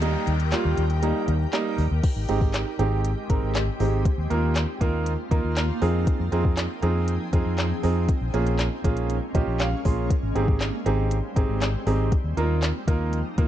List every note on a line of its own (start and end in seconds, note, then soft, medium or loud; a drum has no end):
0.00 0.15 D#2 medium
0.00 0.32 G3 medium
0.00 0.32 A#3 medium
0.00 2.00 D#4 medium
0.00 0.32 D#4 loud
0.00 2.00 G4 medium
0.00 2.00 A#4 medium
0.00 2.00 G5 medium
0.00 closed hi-hat medium
0.00 noise sweep medium
0.27 0.53 D#2 medium
0.27 closed hi-hat medium
0.40 closed hi-hat medium
0.52 0.82 G3 medium
0.52 0.82 A#3 medium
0.52 0.82 F4 loud
0.52 snare medium
0.52 clap loud
0.52 closed hi-hat medium
0.65 0.74 D#2 medium
0.77 1.12 D#2 medium
0.77 closed hi-hat medium
0.90 closed hi-hat medium
1.03 1.33 G3 medium
1.03 1.33 A#3 medium
1.03 1.33 D#4 medium
1.03 closed hi-hat loud
1.28 1.45 D#2 loud
1.28 closed hi-hat medium
1.53 1.83 G3 medium
1.53 1.83 A#3 medium
1.53 1.83 D#4 loud
1.53 snare loud
1.53 clap loud
1.53 closed hi-hat medium
1.78 1.87 D#2 medium
1.78 open hi-hat medium
1.91 2.00 D#2 medium
2.03 4.03 G#3 medium
2.03 4.03 C4 medium
2.03 4.03 G4 medium
2.03 kick loud
2.03 closed hi-hat medium
2.03 crash loud
2.16 2.25 G#1 medium
2.29 2.63 G#1 medium
2.29 2.59 G#3 medium
2.29 2.59 C4 medium
2.29 2.59 D#4 medium
2.29 2.59 G4 medium
2.29 closed hi-hat medium
2.41 kick loud
2.54 snare loud
2.54 clap loud
2.54 closed hi-hat medium
2.79 3.13 G#1 medium
2.79 3.09 G#3 medium
2.79 3.09 C4 medium
2.79 3.09 D#4 medium
2.79 3.09 G4 loud
2.79 closed hi-hat medium
3.05 closed hi-hat loud
3.29 3.38 G#1 medium
3.29 3.59 G#3 medium
3.29 3.60 C4 medium
3.29 3.60 D#4 medium
3.29 3.60 A#4 medium
3.29 kick loud
3.29 closed hi-hat medium
3.42 3.68 G#1 medium
3.55 snare loud
3.55 clap loud
3.55 closed hi-hat medium
3.80 4.06 G#1 medium
3.80 4.05 G#3 medium
3.80 4.05 C4 medium
3.80 4.05 D#4 medium
3.80 4.05 G4 medium
3.80 open hi-hat medium
4.05 5.80 A#3 medium
4.05 8.05 D#4 medium
4.05 5.80 F4 medium
4.05 kick loud
4.05 closed hi-hat medium
4.18 4.26 D#2 medium
4.30 4.65 D#2 medium
4.30 4.60 A#3 medium
4.30 4.60 D#4 medium
4.30 4.60 F4 medium
4.30 4.60 A#4 loud
4.30 closed hi-hat medium
4.56 snare loud
4.56 clap loud
4.56 closed hi-hat medium
4.81 5.15 D#2 medium
4.81 5.11 A#3 medium
4.81 5.11 D#4 medium
4.81 5.11 F4 medium
4.81 5.11 A#4 loud
4.81 kick loud
4.81 closed hi-hat medium
5.06 closed hi-hat loud
5.31 5.40 D#2 medium
5.31 5.61 A#3 medium
5.31 5.61 D#4 medium
5.31 5.61 F4 medium
5.31 5.61 A#4 loud
5.31 kick loud
5.31 closed hi-hat medium
5.44 5.70 D#2 medium
5.57 snare loud
5.57 clap loud
5.57 closed hi-hat medium
5.82 6.07 F2 medium
5.82 8.06 F3 medium
5.82 6.22 C4 medium
5.82 8.06 C4 medium
5.82 6.22 D#4 medium
5.82 6.22 F4 medium
5.82 8.06 G#4 medium
5.82 6.22 G#4 loud
5.82 8.06 G5 medium
5.82 open hi-hat medium
6.07 kick loud
6.07 closed hi-hat medium
6.20 6.28 F2 medium
6.32 6.66 F2 medium
6.32 6.62 C4 medium
6.32 6.62 D#4 medium
6.32 6.62 F4 medium
6.32 6.62 G#4 loud
6.32 closed hi-hat medium
6.45 kick loud
6.57 snare loud
6.57 clap loud
6.57 closed hi-hat medium
6.82 7.17 F2 loud
6.82 7.12 C4 medium
6.82 7.12 D#4 medium
6.82 7.12 F4 medium
6.82 7.13 G#4 loud
6.82 closed hi-hat medium
7.08 closed hi-hat loud
7.33 7.42 F2 medium
7.33 7.63 C4 medium
7.33 7.63 D#4 medium
7.33 7.63 F4 medium
7.33 7.63 G#4 loud
7.33 kick loud
7.33 closed hi-hat medium
7.46 7.71 F2 medium
7.58 snare loud
7.58 clap loud
7.58 closed hi-hat medium
7.83 8.09 F2 medium
7.83 8.09 C4 medium
7.83 8.09 D#4 medium
7.83 8.09 F4 medium
7.83 8.09 G#4 medium
7.83 open hi-hat medium
8.09 12.08 G#3 medium
8.09 10.08 A#3 medium
8.09 10.08 C#4 medium
8.09 kick loud
8.09 closed hi-hat medium
8.21 8.30 A#1 medium
8.34 8.68 A#1 medium
8.34 8.64 A#3 medium
8.34 8.64 C#4 medium
8.34 8.64 F4 medium
8.34 8.64 G#4 loud
8.34 closed hi-hat medium
8.47 closed hi-hat medium
8.59 snare loud
8.59 clap loud
8.59 closed hi-hat medium
8.84 9.18 A#1 medium
8.84 9.14 A#3 medium
8.84 9.14 C#4 medium
8.84 9.14 F4 medium
8.84 9.14 G#4 loud
8.84 kick medium
8.84 closed hi-hat medium
8.97 closed hi-hat medium
9.10 closed hi-hat loud
9.35 9.43 A#1 medium
9.35 9.64 A#3 medium
9.35 9.65 C#4 medium
9.35 9.65 F4 medium
9.35 9.65 G4 loud
9.35 9.58 D#5 medium
9.35 kick loud
9.35 closed hi-hat medium
9.47 9.73 A#1 medium
9.60 9.83 F5 medium
9.60 snare loud
9.60 clap loud
9.60 closed hi-hat medium
9.85 10.11 A#1 medium
9.85 10.10 A#3 medium
9.85 10.10 C#4 medium
9.85 10.10 F4 medium
9.85 10.11 G#4 medium
9.85 10.09 C6 medium
9.85 kick loud
9.85 open hi-hat medium
10.10 12.10 G3 medium
10.10 12.10 C4 medium
10.10 kick loud
10.10 closed hi-hat medium
10.23 10.31 G#1 medium
10.35 10.69 G#1 medium
10.35 10.65 C4 medium
10.35 10.65 D#4 medium
10.35 10.65 G4 medium
10.35 10.66 G#4 loud
10.35 closed hi-hat medium
10.48 kick loud
10.61 snare loud
10.61 clap loud
10.61 closed hi-hat medium
10.86 11.20 G#1 medium
10.86 11.16 C4 medium
10.86 11.16 D#4 medium
10.86 11.16 G4 medium
10.86 11.16 G#4 loud
10.86 closed hi-hat medium
11.11 closed hi-hat loud
11.36 11.45 G#1 medium
11.36 11.66 C4 medium
11.36 11.66 D#4 medium
11.36 11.66 G4 medium
11.36 11.66 G#4 loud
11.36 kick medium
11.36 closed hi-hat medium
11.49 11.74 G#1 medium
11.62 snare medium
11.62 clap loud
11.62 closed hi-hat medium
11.87 12.12 G#1 medium
11.87 12.12 C4 medium
11.87 12.12 D#4 medium
11.87 12.12 G4 medium
11.87 12.12 G#4 medium
11.87 open hi-hat medium
12.12 13.48 F3 medium
12.12 13.48 A#3 medium
12.12 13.48 D#4 medium
12.12 kick loud
12.12 closed hi-hat medium
12.24 12.33 D#2 medium
12.37 12.71 D#2 medium
12.37 12.67 A#3 medium
12.37 12.67 D#4 medium
12.37 12.67 F4 medium
12.37 12.67 A#4 loud
12.37 closed hi-hat medium
12.63 snare loud
12.63 clap loud
12.63 closed hi-hat medium
12.87 13.21 D#2 medium
12.87 13.17 A#3 medium
12.87 13.17 D#4 medium
12.87 13.18 F4 medium
12.87 13.18 A#4 loud
12.87 kick medium
12.87 closed hi-hat medium
13.13 closed hi-hat loud
13.38 13.46 D#2 medium
13.38 13.48 A#3 medium
13.38 13.48 D#4 medium
13.38 13.48 F4 medium
13.38 13.48 A#4 loud
13.38 kick medium
13.38 closed hi-hat medium